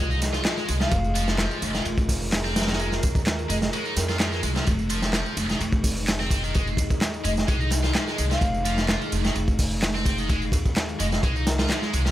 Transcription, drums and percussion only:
0.11 tambourine
0.22 snare, ride, tambourine
0.33 snare, tambourine
0.45 snare, clap, ride, tambourine
0.57 snare, tambourine
0.68 ride, tambourine
0.81 snare, tambourine
0.91 kick, ride, tambourine
1.04 tambourine
1.15 ride, tambourine
1.28 snare, tambourine
1.38 snare, clap, ride, tambourine
1.51 ride, tambourine
1.62 ride, tambourine
1.75 snare, tambourine
1.85 ride, tambourine
1.98 kick, tambourine
2.09 kick, open hi-hat, ride, tambourine
2.22 tambourine
2.32 snare, clap, ride, tambourine
2.45 snare, tambourine
2.56 snare, ride, tambourine
2.62 snare, ride
2.67 snare, ride, tambourine
2.73 snare, ride
2.79 ride, tambourine
2.92 snare, tambourine
3.03 kick, ride, tambourine
3.15 kick, tambourine
3.25 snare, clap, ride, tambourine
3.39 ride, tambourine
3.49 ride, tambourine
3.62 snare, tambourine
3.73 ride, tambourine
3.85 tambourine
3.97 snare, ride, tambourine
4.09 snare, tambourine
4.20 snare, clap, ride, tambourine
4.32 snare, tambourine
4.43 ride, tambourine
4.56 snare, tambourine
4.67 kick, ride, tambourine
4.79 tambourine
4.89 ride, tambourine
5.02 snare, tambourine
5.13 snare, clap, ride, tambourine
5.26 ride, tambourine
5.37 ride, tambourine
5.49 snare, tambourine
5.61 ride, tambourine
5.73 kick, tambourine
5.84 kick, open hi-hat, ride, tambourine
5.97 tambourine
6.08 snare, clap, ride, tambourine
6.20 snare, tambourine
6.31 kick, ride, tambourine
6.44 tambourine
6.54 kick, ride, tambourine
6.67 tambourine
6.77 kick, ride, tambourine
6.90 kick, tambourine
7.01 snare, clap, ride, tambourine
7.14 ride, tambourine
7.24 ride, tambourine
7.37 snare, tambourine
7.48 kick, ride, tambourine
7.61 tambourine
7.70 snare, ride, tambourine
7.84 snare, tambourine
7.95 snare, clap, ride, tambourine
8.08 snare, tambourine
8.18 ride, tambourine
8.31 snare, tambourine
8.41 kick, ride, tambourine
8.54 tambourine
8.65 ride, tambourine
8.78 snare, tambourine
8.89 snare, clap, ride, tambourine
9.01 ride, tambourine
9.12 ride, tambourine
9.25 snare, tambourine
9.35 ride, tambourine
9.48 kick, tambourine
9.59 kick, open hi-hat, ride, tambourine
9.71 tambourine
9.82 snare, clap, ride, tambourine
9.95 snare, tambourine
10.06 kick, ride, tambourine
10.18 tambourine
10.29 kick, ride, tambourine
10.42 tambourine
10.52 kick, ride, tambourine
10.65 kick, tambourine
10.76 snare, clap, ride, tambourine
10.89 ride, tambourine
11.00 ride, tambourine
11.12 snare, tambourine
11.23 kick, ride, tambourine
11.36 tambourine
11.47 snare, ride, tambourine
11.59 snare, ride, tambourine
11.69 snare, clap, ride, tambourine
11.82 snare, tambourine
11.93 ride, tambourine
12.06 snare, tambourine

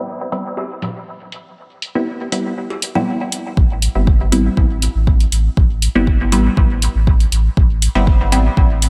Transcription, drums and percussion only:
0.32 open hi-hat
0.57 cowbell
0.82 open hi-hat, low bongo
1.32 open hi-hat
1.82 open hi-hat
2.32 open hi-hat
2.70 cowbell
2.82 open hi-hat
2.95 low bongo
3.32 open hi-hat
3.57 kick
3.82 open hi-hat
4.07 kick
4.32 open hi-hat
4.57 kick
4.82 open hi-hat
5.07 kick
5.20 open hi-hat
5.32 open hi-hat
5.57 kick
5.82 open hi-hat
6.07 kick
6.32 open hi-hat
6.57 kick
6.82 open hi-hat
7.07 kick
7.20 open hi-hat
7.32 open hi-hat
7.57 kick
7.82 open hi-hat
8.07 kick
8.32 open hi-hat
8.57 kick
8.82 open hi-hat

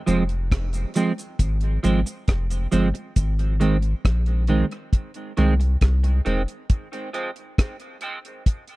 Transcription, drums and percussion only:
0.07 closed hi-hat, cabasa
0.29 closed hi-hat
0.52 kick, cross-stick, closed hi-hat
0.73 closed hi-hat, cabasa
0.94 closed hi-hat, cabasa
1.18 closed hi-hat, cabasa
1.39 kick, closed hi-hat, cabasa
1.61 closed hi-hat
1.84 closed hi-hat, cabasa
2.07 closed hi-hat, cabasa
2.28 kick, cross-stick, closed hi-hat
2.50 closed hi-hat, cabasa
2.72 closed hi-hat, cabasa
2.95 closed hi-hat
3.16 kick, closed hi-hat, cabasa
3.39 closed hi-hat
3.61 closed hi-hat
3.82 closed hi-hat
4.05 kick, cross-stick, closed hi-hat
4.26 closed hi-hat
4.47 closed hi-hat
4.71 closed hi-hat
4.93 kick, closed hi-hat
5.14 closed hi-hat
5.37 closed hi-hat
5.61 closed hi-hat
5.81 kick, cross-stick, closed hi-hat
6.04 closed hi-hat
6.26 closed hi-hat
6.48 closed hi-hat
6.70 kick, closed hi-hat
6.93 closed hi-hat
7.14 closed hi-hat
7.36 closed hi-hat
7.58 kick, cross-stick, closed hi-hat
7.80 closed hi-hat
8.01 closed hi-hat
8.25 closed hi-hat
8.46 kick, closed hi-hat
8.67 closed hi-hat

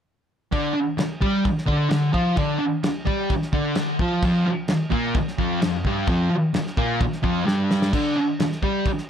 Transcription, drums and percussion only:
0.53 kick, crash
0.98 snare, crash
1.22 kick
1.45 kick, crash
1.58 snare
1.68 kick
1.91 snare, crash
2.14 kick
2.37 kick, crash
2.83 snare, crash
3.07 kick
3.30 kick, crash
3.42 snare
3.53 kick
3.75 snare, crash
3.99 kick
4.22 kick, crash
4.68 snare, crash
4.92 kick
5.14 kick, crash
5.28 snare
5.38 kick
5.62 snare, crash
5.85 kick
6.07 kick, crash
6.54 snare, crash
6.67 snare
6.77 kick
7.01 kick, crash
7.13 snare
7.24 kick
7.48 snare
7.71 snare
7.82 snare
7.93 kick, crash
8.40 snare, crash
8.52 snare
8.63 kick
8.86 kick, crash
8.98 snare

